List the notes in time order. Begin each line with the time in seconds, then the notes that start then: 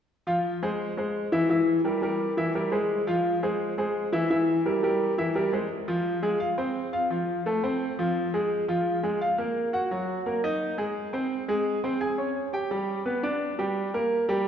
0.27 F3 F4 F5
0.63 G#3 G#4 C5
0.97 G#3 G#4 C5
1.32 E3 E4 E5
1.50 E3 E4 E5
1.85 G3 G4 A#4
2.02 G3 G4 A#4
2.37 E3 E4 E5
2.55 G3 G4 A#4
2.72 G#3 G#4 C5
3.07 F3 F4 F5
3.43 G#3 G#4 C5
3.78 G#3 G#4 C5
4.13 E3 E4 E5
4.30 E3 E4 E5
4.66 G3 G4 A#4
4.83 G3 G4 A#4
5.18 E3 E4 E5
5.35 G3 G4 A#4
5.53 G#3 G#4 C5
5.88 F3 F4
6.22 G#3 G#4
6.40 F4 F5
6.58 C4 C5
6.93 F4 F5
7.10 F3 F4
7.46 A3 A4
7.64 C4 C5
7.99 F3 F4
8.34 G#3 G#4
8.68 F3 F4
9.03 G#3 G#4
9.21 F4 F5
9.38 A#3 A#4
9.73 F#4 F#5
9.91 F#3 F#4
10.26 A#3 A#4
10.44 D#4 D#5
10.78 G#3 G#4
11.13 C4 C5
11.48 G#3 G#4
11.84 C4 C5
12.01 G#4 G#5
12.18 C#4 C#5
12.53 G4 G5
12.71 G3 G4
13.06 B3 B4
13.23 D4 D5
13.59 G3 G4
13.94 A#3 A#4
14.29 G3 G4